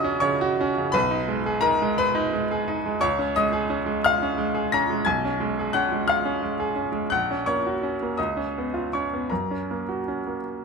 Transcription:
grand piano
Already playing: A#1 C#3 C#4 F#4 D#5 F#5 G#5 D#6 F#6 G#6
0.04 C#4
0.20 C#3 C#5 C#6
0.41 F#4
0.61 C#4
0.78 C#3
0.92 B1 B4 B5
1.11 D#4
1.28 G#3
1.46 G#4
1.61 D#4 A#4 A#5
1.82 G#3
1.98 B4 B5
2.15 D#4
2.33 G#3
2.51 G#4
2.68 D#4
2.86 G#3
3.01 C#2 C#5 C#6
3.19 C#4
3.36 G#3 D#5 D#6
3.53 G#4
3.70 C#4
3.86 G#3
4.04 F5 F6
4.23 C#4
4.38 G#3
4.55 G#4
4.72 C#4 A#5 A#6
4.90 G#3
5.05 B1 G#5 G#6
5.25 C#4
5.40 G#3
5.59 G#4
5.73 C#4 F#5 F#6
5.92 G#3
6.08 F5 F6
6.25 C#4
6.43 G#3
6.60 G#4
6.76 C#4
6.92 G#3
7.10 A#1 F#5 F#6
7.31 C#4
7.46 A#3 C#5 C#6
7.66 F#4
7.83 C#4
8.03 A#3
8.17 C#2 D#5 D#6
8.37 C#4
8.58 B3
8.74 F4
8.93 C#4 C#5 C#6
9.13 B3
9.30 F#2 A#4 A#5
9.51 C#4
9.71 A#3
9.89 F#4
10.08 C#4
10.27 A#3

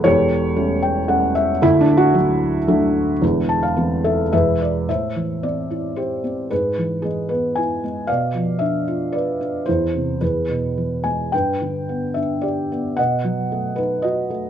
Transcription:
felt piano
0.04 E1 E2 G4 A4 C#5
0.56 G3 A3 C#4
0.82 G5
1.08 G3 A3 C#4 F#5
1.35 E5
1.62 D1 D2 A3 E4
1.81 D4
1.97 F#4
2.14 F#3 A3 D4
2.68 D3 F#3 A3 D4
3.22 E1 E2
3.49 A5
3.63 F5
3.76 E3 A3 C4
4.05 A4 E5
4.33 E1 E2 G#4 B4 E5
4.62 D5
4.89 A2 C5 E5
5.16 E3
5.43 C4 D5
5.71 E4
5.96 G4 C5
6.24 C4
6.51 G#2 G#4 B4
6.78 E3
7.02 G#3 G#4
7.29 B3 B4
7.55 E4 G#5
7.84 G#3
8.07 B2 D5 F5
8.35 F3
8.59 D4 E5
8.88 F4
9.12 B4 D5
9.41 D4
9.66 E2 E4 C5
9.96 C3
10.21 E2 G#4 B4
10.49 B2
10.77 E3
11.04 G#3 G#5
11.32 G2 B4 G5
11.62 D3
11.89 B3
12.14 D4 E5
12.42 G4 D5
12.72 B3
12.97 B2 D#5 F#5
13.24 F#3
13.52 A3
13.76 D#4 B4
14.02 F#4 D#5
14.30 A3

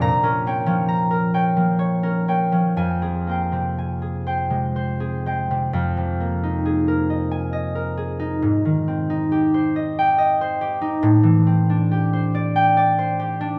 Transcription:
harp
Already playing: F3
0.01 A#2 A#5
0.23 C#4 A#4
0.47 C4 C#5 G5
0.66 F3 C#4
0.88 A#5
1.11 A#4
1.34 C#5 G5
1.57 F3 A#3
1.79 C#5
2.03 C#4 A#4
2.28 A#3 C#5 G5
2.52 F3 C#4
2.77 F2 G#5
3.02 C4 G#4
3.27 A#3 C5
3.31 G5
3.52 C3 C4
3.78 G#5
4.02 G#4
4.27 C5 G5
4.50 C3 G#3
4.76 C5
5.00 C4 G#4
5.26 G#3 C5 G5
5.51 C3 C4
5.73 F2
5.97 C3
6.20 A#3
6.43 D#4
6.66 G#4
6.88 A#4
7.10 D#5
7.31 G#5
7.53 D#5
7.75 A#4
7.97 G#4
8.20 D#4
8.42 G#2
8.65 D#3
8.88 C4
9.10 D#4
9.32 G4
9.54 C5
9.76 D#5
9.99 G5
10.18 D#5
10.41 C5
10.61 G4
10.81 D#4
11.03 A2
11.23 E3
11.47 C4
11.70 D4
11.92 G4
12.13 C5
12.35 D5
12.56 G5
12.77 D5
12.99 C5
13.20 G4
13.41 D4

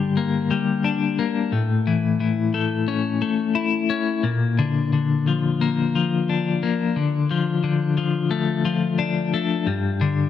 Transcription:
clean electric guitar
Already playing: G2 D3 G3
0.17 A#3
0.51 G3
0.84 D4
1.19 A#3
1.52 A2
1.87 E3
2.20 E3
2.54 A3
2.88 C#4
3.22 A3
3.55 E4
3.90 C#4
4.23 A#2
4.59 D3
4.93 D3
5.27 F3
5.61 A#3
5.95 F3
6.29 D4
6.63 A#3
6.96 D3
7.31 F3
7.64 D3
7.98 F3
8.31 A3
8.65 F3
8.99 D4
9.34 A3
9.67 G2
10.01 D3

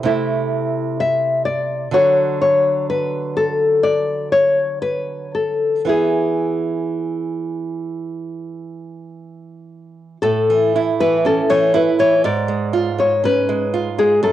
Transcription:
nylon-string guitar
0.03 C3 A3 E4
1.00 E5
1.45 D5
1.91 D3 F#3 F#4 C#5
2.41 C#5
2.90 B4
3.37 A4
3.83 D5
4.32 C#5
4.82 B4
5.35 A4
5.85 E3 B3 E4
5.89 G#4
10.22 A2 A4
10.50 E3
10.76 E4
11.00 E3 B4
11.25 C#4 A4
11.50 E3 C#5
11.74 E4 B4
11.99 E3 C#5
12.24 G#2 D5
12.48 G#3
12.73 F4
12.98 G#3 C#5
13.24 C#4 B4
13.49 G#3
13.74 F4
13.98 G#3 G#4
14.23 F#2 A4

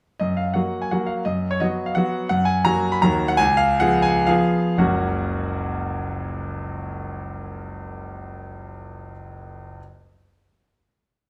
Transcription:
grand piano
0.20 F#2 D#5
0.37 F5
0.54 F#3 A#3 F#4 F#5
0.82 G#5
0.91 F#3 A#3 F#4 F#5
1.07 F5
1.25 F#2 D#5
1.51 C#5
1.60 F#3 B3 F#4 D#5
1.86 F5
1.95 F#3 B3 F#4 F#5
2.29 F#2 F#5
2.45 G#5
2.65 F#3 A#3 F#4 A#5
2.92 B5
3.02 D#2 F#3 A#3 F#4 A#5
3.28 F#5
3.37 C#2 G#5
3.57 F5
3.80 F3 B3 G#4 F#5
4.02 G#5
4.27 F3 B3 G#4 F5
4.78 F#1 C#2 F#3 A#3 C#4 F#4 F#5

